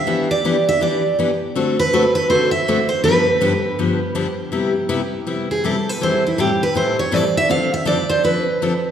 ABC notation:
X:1
M:4/4
L:1/16
Q:"Swing" 1/4=162
K:C
V:1 name="Steel-string acoustic guitar"
e2 d4 e2 d4 z4 | z2 B4 B2 c2 e4 c2 | B12 z4 | z8 z2 _A2 =A2 B2 |
c2 E2 G2 B2 c2 _d2 =d2 e2 | f2 e2 d2 c2 B8 |]
V:2 name="Steel-string acoustic guitar"
[E,B,DG]2 z2 [E,B,DG] z3 [E,B,DG]2 z2 [E,B,DG] z3 | [D,A,C^FA]2 z2 [D,A,CFA] z3 [D,A,CFA]2 z2 [D,A,CFA] z3 | [G,,D,F,B,DG]2 z2 [G,,D,F,B,DG] z3 [G,,D,F,B,DG]2 z2 [G,,D,F,B,DG] z3 | [C,G,B,EG]2 z2 [C,G,B,EG] z3 [C,G,B,EG]2 z2 [C,G,B,EG] z3 |
[A,,E,G,CEA]2 z2 [A,,E,G,CEA] z3 [A,,E,G,CEA]2 z2 [A,,E,G,CEA] z3 | [D,F,CDA]2 z2 [D,F,CDA] z3 [D,F,CDA]2 z2 [D,F,CDA] z3 |]